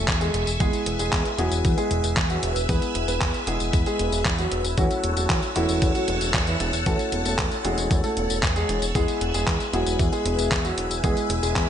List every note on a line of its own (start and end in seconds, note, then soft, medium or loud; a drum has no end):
0.00 0.57 A3 medium
0.00 0.57 C#4 medium
0.00 0.57 E4 medium
0.00 0.57 F#4 medium
0.00 0.56 A4 medium
0.00 4.74 E5 medium
0.00 4.74 G#5 medium
0.00 0.56 C#6 medium
0.08 0.30 E2 medium
0.08 kick loud
0.08 clap loud
0.08 closed hi-hat medium
0.08 tambourine soft
0.21 0.48 G#3 medium
0.21 0.48 G#4 medium
0.21 closed hi-hat soft
0.21 tambourine soft
0.34 0.45 E1 loud
0.34 closed hi-hat loud
0.47 0.58 E1 medium
0.47 closed hi-hat soft
0.47 tambourine medium
0.60 0.71 E2 loud
0.60 0.87 G#3 medium
0.60 1.36 G#3 medium
0.60 1.36 B3 medium
0.60 1.36 E4 medium
0.60 0.87 G#4 loud
0.60 1.36 G#4 medium
0.60 4.74 B4 medium
0.60 8.91 E6 loud
0.60 kick loud
0.60 closed hi-hat medium
0.60 tambourine soft
0.73 closed hi-hat soft
0.73 tambourine soft
0.86 0.97 E1 medium
0.86 closed hi-hat loud
0.99 1.10 E1 medium
0.99 1.26 G#3 medium
0.99 1.26 G#4 loud
0.99 closed hi-hat soft
0.99 tambourine medium
1.12 1.23 E2 medium
1.12 kick loud
1.12 clap loud
1.12 closed hi-hat medium
1.12 tambourine soft
1.25 closed hi-hat soft
1.25 tambourine soft
1.38 1.49 E1 loud
1.38 1.65 F#3 medium
1.38 2.66 G#3 loud
1.38 2.66 B3 medium
1.38 2.66 E4 medium
1.38 1.65 F#4 loud
1.38 2.66 G#4 loud
1.38 closed hi-hat medium
1.52 1.63 E1 medium
1.52 closed hi-hat soft
1.52 tambourine medium
1.65 1.76 E2 medium
1.65 kick loud
1.65 closed hi-hat medium
1.65 tambourine soft
1.77 2.13 G#3 medium
1.77 2.14 G#4 medium
1.77 closed hi-hat soft
1.77 tambourine soft
1.91 2.02 E1 loud
1.91 closed hi-hat medium
2.04 2.15 E1 medium
2.04 closed hi-hat soft
2.04 tambourine medium
2.17 2.39 E2 medium
2.17 kick loud
2.17 clap loud
2.17 closed hi-hat medium
2.17 tambourine soft
2.30 2.57 F#3 medium
2.30 2.57 F#4 medium
2.30 closed hi-hat soft
2.30 tambourine soft
2.43 2.54 E1 loud
2.43 closed hi-hat loud
2.56 2.67 E1 loud
2.56 closed hi-hat soft
2.56 tambourine medium
2.69 2.80 E2 loud
2.69 3.44 G#3 medium
2.69 2.96 B3 medium
2.69 3.44 B3 medium
2.69 3.44 E4 medium
2.69 3.44 G#4 medium
2.69 2.96 B4 loud
2.69 kick loud
2.69 closed hi-hat medium
2.69 tambourine soft
2.82 closed hi-hat soft
2.82 tambourine soft
2.95 3.06 E1 medium
2.95 closed hi-hat medium
3.08 3.19 E1 medium
3.08 3.35 B3 medium
3.08 3.35 B4 medium
3.08 closed hi-hat soft
3.08 tambourine medium
3.21 3.32 E2 medium
3.21 kick loud
3.21 clap loud
3.21 closed hi-hat medium
3.21 tambourine soft
3.34 closed hi-hat soft
3.34 tambourine soft
3.47 3.58 E1 loud
3.47 3.74 G#3 medium
3.47 4.75 G#3 medium
3.47 4.75 B3 medium
3.47 4.75 E4 medium
3.47 3.74 G#4 medium
3.47 4.75 G#4 medium
3.47 closed hi-hat medium
3.60 3.71 E1 medium
3.60 closed hi-hat soft
3.60 tambourine medium
3.73 3.84 E2 medium
3.73 kick loud
3.73 closed hi-hat medium
3.73 tambourine soft
3.86 4.22 G#3 medium
3.86 4.22 G#4 medium
3.86 closed hi-hat soft
3.86 tambourine soft
3.99 4.10 E1 loud
3.99 closed hi-hat medium
4.12 4.23 E1 loud
4.12 closed hi-hat soft
4.12 tambourine medium
4.25 4.47 E2 medium
4.25 kick loud
4.25 clap loud
4.25 closed hi-hat medium
4.25 tambourine soft
4.39 4.66 F#3 medium
4.39 4.66 F#4 medium
4.39 closed hi-hat soft
4.39 tambourine soft
4.52 4.63 E1 medium
4.52 closed hi-hat medium
4.65 4.76 E1 medium
4.65 closed hi-hat soft
4.65 tambourine medium
4.78 4.89 E2 loud
4.78 5.05 F#3 medium
4.78 5.53 A3 medium
4.78 5.53 C#4 medium
4.78 5.53 E4 medium
4.78 5.53 F#4 medium
4.78 5.05 F#4 loud
4.78 8.91 C#5 medium
4.78 8.91 F#5 medium
4.78 8.91 A5 medium
4.78 kick loud
4.78 closed hi-hat medium
4.78 tambourine soft
4.91 closed hi-hat soft
4.91 tambourine soft
5.04 5.15 E1 medium
5.04 closed hi-hat medium
5.17 5.28 E1 medium
5.17 5.44 F#3 medium
5.17 5.44 F#4 medium
5.17 closed hi-hat soft
5.17 tambourine medium
5.30 5.41 E2 medium
5.30 kick loud
5.30 clap loud
5.30 closed hi-hat medium
5.30 tambourine soft
5.43 closed hi-hat soft
5.43 tambourine soft
5.56 5.67 E1 loud
5.56 5.83 E3 medium
5.56 6.83 A3 loud
5.56 6.83 C#4 medium
5.56 5.83 E4 medium
5.56 6.83 E4 medium
5.56 6.83 F#4 loud
5.56 closed hi-hat medium
5.69 5.80 E1 medium
5.69 closed hi-hat soft
5.69 tambourine medium
5.82 5.93 E2 medium
5.82 kick loud
5.82 closed hi-hat medium
5.82 tambourine soft
5.95 6.31 F#3 medium
5.95 6.31 F#4 medium
5.95 closed hi-hat soft
5.95 tambourine soft
6.08 6.19 E1 loud
6.08 closed hi-hat medium
6.21 6.32 E1 medium
6.21 closed hi-hat soft
6.21 tambourine medium
6.34 6.56 E2 medium
6.34 kick loud
6.34 clap loud
6.34 closed hi-hat medium
6.34 tambourine soft
6.47 6.74 E3 medium
6.47 6.74 E4 medium
6.47 closed hi-hat soft
6.47 tambourine soft
6.60 6.71 E1 loud
6.60 closed hi-hat medium
6.73 6.84 E1 medium
6.73 closed hi-hat soft
6.73 tambourine medium
6.86 6.97 E2 loud
6.86 7.62 A3 medium
6.86 7.13 A3 medium
6.86 7.62 C#4 medium
6.86 7.62 E4 medium
6.86 7.62 F#4 medium
6.86 7.13 A4 loud
6.86 kick loud
6.86 closed hi-hat medium
6.86 tambourine soft
6.99 closed hi-hat soft
6.99 tambourine soft
7.12 7.23 E1 medium
7.12 closed hi-hat medium
7.25 7.36 E1 medium
7.25 7.53 A3 medium
7.25 7.53 A4 medium
7.25 closed hi-hat soft
7.25 tambourine medium
7.38 7.50 E2 medium
7.38 kick loud
7.38 clap loud
7.38 closed hi-hat medium
7.38 tambourine soft
7.52 closed hi-hat soft
7.52 tambourine soft
7.65 7.76 E1 loud
7.65 7.92 G#3 medium
7.65 8.92 A3 medium
7.65 8.92 C#4 medium
7.65 8.92 E4 medium
7.65 8.92 F#4 medium
7.65 7.92 G#4 medium
7.65 closed hi-hat medium
7.78 7.89 E1 medium
7.78 closed hi-hat soft
7.78 tambourine medium
7.91 8.02 E2 loud
7.91 kick loud
7.91 closed hi-hat medium
7.91 tambourine soft
8.04 8.40 A3 medium
8.04 8.40 A4 medium
8.04 closed hi-hat soft
8.04 tambourine soft
8.17 8.28 E1 loud
8.17 closed hi-hat medium
8.30 8.41 E1 medium
8.30 closed hi-hat soft
8.30 tambourine medium
8.43 8.65 E2 medium
8.43 kick loud
8.43 clap loud
8.43 closed hi-hat medium
8.43 tambourine soft
8.56 8.83 G#3 medium
8.56 8.83 G#4 medium
8.56 closed hi-hat soft
8.56 tambourine soft
8.69 8.80 E1 loud
8.69 closed hi-hat medium
8.82 8.93 E1 medium
8.82 closed hi-hat soft
8.82 tambourine medium
8.95 9.06 E2 loud
8.95 9.22 G#3 medium
8.95 9.70 G#3 medium
8.95 9.70 B3 medium
8.95 9.70 E4 medium
8.95 9.22 G#4 loud
8.95 9.70 G#4 medium
8.95 11.69 B4 medium
8.95 11.69 E5 medium
8.95 11.69 G#5 medium
8.95 11.69 E6 medium
8.95 kick loud
8.95 closed hi-hat medium
8.95 tambourine soft
9.08 closed hi-hat soft
9.08 tambourine soft
9.21 9.32 E1 medium
9.21 closed hi-hat medium
9.34 9.45 E1 medium
9.34 9.61 G#3 medium
9.34 9.61 G#4 medium
9.34 closed hi-hat soft
9.34 tambourine medium
9.47 9.58 E2 medium
9.47 kick loud
9.47 clap loud
9.47 closed hi-hat medium
9.47 tambourine medium
9.60 closed hi-hat soft
9.60 tambourine soft
9.73 9.84 E1 loud
9.73 10.00 F#3 medium
9.73 11.01 G#3 loud
9.73 11.01 B3 medium
9.73 11.01 E4 medium
9.73 10.00 F#4 medium
9.73 11.01 G#4 loud
9.73 closed hi-hat medium
9.87 9.97 E1 medium
9.87 closed hi-hat soft
9.87 tambourine medium
9.99 10.10 E2 loud
9.99 kick loud
9.99 closed hi-hat medium
9.99 tambourine medium
10.12 10.48 G#3 medium
10.12 10.48 G#4 medium
10.12 closed hi-hat soft
10.12 tambourine soft
10.26 10.36 E1 loud
10.26 closed hi-hat medium
10.39 10.50 E1 medium
10.39 closed hi-hat soft
10.39 tambourine medium
10.52 10.73 E2 medium
10.52 kick loud
10.52 clap loud
10.52 closed hi-hat medium
10.52 tambourine medium
10.65 10.92 F#3 medium
10.65 10.92 F#4 medium
10.65 closed hi-hat soft
10.65 tambourine soft
10.78 10.89 E1 loud
10.78 closed hi-hat medium
10.91 11.02 E1 loud
10.91 closed hi-hat soft
10.91 tambourine medium
11.04 11.15 E2 loud
11.04 11.31 G#3 medium
11.04 11.69 G#3 medium
11.04 11.69 B3 medium
11.04 11.69 E4 medium
11.04 11.31 G#4 loud
11.04 11.69 G#4 medium
11.04 kick loud
11.04 closed hi-hat medium
11.04 tambourine medium
11.17 closed hi-hat soft
11.17 tambourine soft
11.30 11.41 E1 medium
11.30 closed hi-hat medium
11.43 11.54 E1 medium
11.43 11.69 G#3 medium
11.43 11.69 G#4 medium
11.43 closed hi-hat soft
11.43 tambourine medium
11.56 11.67 E2 medium
11.56 kick loud
11.56 clap loud
11.56 closed hi-hat medium
11.56 tambourine medium